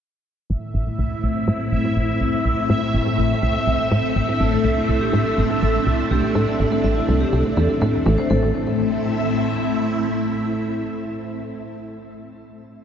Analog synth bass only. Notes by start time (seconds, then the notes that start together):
0.50 A1
0.74 A1
0.99 C2
1.23 C2
1.48 A2
1.72 A1
1.96 A1
2.21 C2
2.45 C2
2.70 A2
2.94 A1
3.18 A1
3.43 C2
3.67 C2
3.91 A2
4.16 A1
4.40 A1
4.64 C2
4.89 C2
5.13 A2
5.38 A1
5.62 A1
5.86 C2
6.11 C2
6.35 A2
6.60 A1
6.84 A1
7.08 C2
7.33 C2
7.57 E2
7.82 A2
8.06 A1
8.30 A1